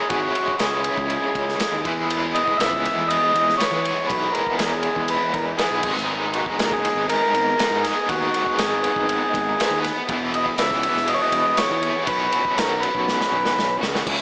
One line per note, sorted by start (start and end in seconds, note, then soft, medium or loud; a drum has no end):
0.00 0.10 G#3 medium
0.00 0.12 E4 medium
0.00 0.12 G#4 medium
0.09 0.29 G#1 loud
0.09 1.83 C#3 medium
0.09 1.85 G#3 medium
0.09 1.84 C#4 loud
0.09 1.86 E4 loud
0.09 0.56 F#4 loud
0.09 1.87 G#4 loud
0.09 kick loud
0.09 ride loud
0.35 ride medium
0.48 kick medium
0.59 0.88 C#2 medium
0.59 1.81 G#4 medium
0.59 snare loud
0.59 ride medium
0.84 ride medium
0.97 1.16 C#2 loud
0.97 kick medium
1.10 ride medium
1.35 1.54 C#2 loud
1.35 kick medium
1.35 ride medium
1.49 snare soft
1.60 snare loud
1.60 ride loud
1.72 1.81 D#2 medium
1.84 3.58 E2 medium
1.84 2.42 E2 medium
1.84 3.58 E3 loud
1.84 3.60 G#3 medium
1.84 3.60 B3 medium
1.84 3.59 E4 loud
1.84 3.62 G#4 medium
1.84 kick loud
1.84 ride medium
2.10 ride loud
2.35 2.60 D#5 loud
2.35 ride medium
2.48 kick medium
2.57 2.88 C#2 loud
2.57 3.10 E5 loud
2.57 snare loud
2.57 ride loud
2.73 kick medium
2.85 ride medium
2.97 3.16 E2 medium
3.08 3.55 D#5 loud
3.08 ride loud
3.34 3.53 E2 loud
3.34 ride medium
3.49 snare soft
3.58 3.83 E2 medium
3.58 3.83 E3 medium
3.58 3.85 G#3 medium
3.58 3.86 B3 medium
3.58 4.10 C#5 loud
3.58 snare loud
3.58 ride loud
3.62 3.84 E4 medium
3.62 3.87 G#4 medium
3.71 3.90 E3 medium
3.84 5.56 E2 medium
3.84 5.57 E3 medium
3.84 5.59 G#3 loud
3.84 5.60 B3 medium
3.84 5.59 E4 loud
3.84 5.61 G#4 medium
3.84 ride medium
4.07 4.28 B1 loud
4.07 4.34 B4 medium
4.07 kick loud
4.07 ride loud
4.32 4.56 A#4 medium
4.32 ride medium
4.47 kick medium
4.58 4.87 E2 medium
4.58 4.66 G#4 medium
4.58 snare loud
4.58 ride loud
4.67 4.73 A#4 medium
4.73 5.10 G#4 medium
4.83 ride medium
4.96 5.15 E2 medium
4.96 kick medium
5.08 5.35 B4 loud
5.08 ride loud
5.34 5.53 E2 loud
5.34 5.45 A#4 medium
5.34 kick medium
5.34 ride medium
5.57 5.82 E2 medium
5.57 5.82 E3 medium
5.57 5.83 G#3 medium
5.57 5.84 B3 medium
5.57 5.83 E4 medium
5.57 5.93 G#4 medium
5.57 snare loud
5.57 ride loud
5.61 5.86 G#4 medium
5.71 5.80 B1 medium
5.83 6.41 G#1 medium
5.83 7.56 G#2 medium
5.83 7.57 D#3 medium
5.83 7.59 G#3 medium
5.83 7.59 B3 medium
5.83 7.58 D#4 medium
5.83 7.60 G#4 medium
5.83 kick loud
5.83 crash loud
5.97 snare soft
6.08 10.04 B3 medium
6.08 10.04 D#5 medium
6.08 8.06 G#5 medium
6.08 10.04 D#6 medium
6.33 6.46 F#4 medium
6.33 ride medium
6.46 kick medium
6.58 6.87 F#1 medium
6.58 6.66 G#4 medium
6.58 snare loud
6.58 ride medium
6.65 6.73 A#4 medium
6.71 7.07 G#4 medium
6.71 kick medium
6.85 ride medium
6.95 7.14 G#1 medium
7.09 7.86 A#4 loud
7.09 ride loud
7.33 7.52 G#1 medium
7.33 ride medium
7.57 7.81 G#2 medium
7.57 7.82 D#3 medium
7.57 7.84 G#3 medium
7.57 7.85 B3 medium
7.57 7.83 D#4 loud
7.57 7.86 G#4 medium
7.57 snare loud
7.57 ride loud
7.70 7.90 G#2 loud
7.83 9.56 G#2 medium
7.83 9.57 D#3 medium
7.83 9.57 G#3 loud
7.83 9.60 B3 medium
7.83 9.58 D#4 medium
7.83 8.09 G#4 medium
7.83 9.58 G#4 loud
7.83 snare soft
7.83 ride medium
8.07 8.27 D#2 loud
8.07 8.60 F#4 loud
8.07 10.05 F#5 medium
8.07 kick loud
8.07 ride loud
8.34 ride medium
8.46 kick medium
8.58 8.87 G#1 medium
8.58 9.79 G#4 medium
8.58 snare loud
8.58 ride loud
8.84 ride medium
8.96 9.15 G#1 medium
8.96 kick medium
9.09 ride loud
9.34 9.52 G#1 medium
9.34 kick medium
9.34 ride medium
9.58 9.82 G#2 medium
9.58 9.82 D#3 medium
9.58 9.82 G#3 medium
9.58 10.10 B3 medium
9.58 9.83 D#4 medium
9.58 9.83 G#4 medium
9.58 snare loud
9.58 ride loud
9.70 9.89 D#2 medium
9.84 snare soft
9.84 ride medium
10.07 10.46 E1 loud
10.07 11.81 E2 medium
10.07 11.81 B2 medium
10.07 11.82 E3 medium
10.07 11.83 B3 loud
10.07 12.05 E4 medium
10.07 11.82 E4 loud
10.07 11.81 G#4 loud
10.07 14.03 B4 medium
10.07 12.05 G#5 medium
10.07 12.06 B5 medium
10.07 kick loud
10.07 ride loud
10.34 10.46 D#5 loud
10.34 ride medium
10.46 kick medium
10.58 10.86 C#2 medium
10.58 11.10 E5 loud
10.58 snare loud
10.58 ride loud
10.71 kick medium
10.71 snare soft
10.83 ride medium
10.95 11.14 E1 medium
10.95 snare soft
11.07 11.15 D#5 loud
11.07 ride loud
11.14 11.21 C#5 medium
11.22 11.59 D#5 loud
11.32 11.51 E1 medium
11.32 ride medium
11.57 12.04 C#5 loud
11.57 snare loud
11.57 ride loud
11.70 11.89 E2 loud
11.82 12.07 E2 medium
11.82 12.05 B2 medium
11.82 12.07 E3 medium
11.82 12.08 B3 medium
11.82 12.06 E4 medium
11.82 12.06 G#4 medium
11.82 ride medium
12.06 12.26 B1 loud
12.06 13.79 B2 medium
12.06 13.80 F#3 medium
12.06 13.81 B3 medium
12.06 13.81 C#4 loud
12.06 13.80 F#4 loud
12.06 12.59 B4 loud
12.06 14.04 C#5 medium
12.06 14.04 F#5 medium
12.06 14.05 C#6 medium
12.06 kick loud
12.06 ride loud
12.32 ride medium
12.45 kick medium
12.56 12.85 B1 medium
12.56 12.83 A#4 medium
12.56 snare loud
12.56 ride loud
12.80 13.77 B4 medium
12.80 ride medium
12.95 13.13 B1 medium
12.95 kick medium
13.08 snare medium
13.21 snare medium
13.32 13.51 B1 loud
13.45 snare medium
13.56 13.79 B1 medium
13.56 snare medium
13.81 14.04 C#2 medium
13.81 14.06 B2 medium
13.81 14.06 F#3 medium
13.81 14.06 B3 medium
13.81 14.05 C#4 medium
13.81 14.05 F#4 medium
13.81 snare loud
13.95 snare medium
14.05 14.22 C#2 loud
14.05 14.22 C#3 medium
14.05 14.22 G#3 loud
14.05 14.22 C#4 medium
14.05 14.22 E4 medium
14.05 14.22 E4 loud
14.05 14.22 G#4 medium
14.05 14.22 C#5 medium
14.05 14.22 G#5 medium
14.05 kick loud
14.05 crash loud
14.10 14.22 G#4 loud